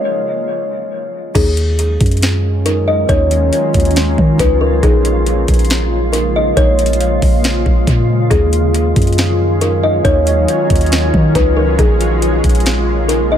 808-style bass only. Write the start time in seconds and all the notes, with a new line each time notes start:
1.35 D#2
2.01 F#2
3.09 D#2
3.75 D#2
4.18 D#3
4.39 C#2
4.83 A#1
5.48 A#1
6.57 A#1
7.22 A#1
7.66 A#1
7.87 A#2
8.31 D#2
8.96 F#2
10.05 D#2
10.70 D#2
11.14 D#3
11.35 C#2
11.79 A#1
12.44 A#1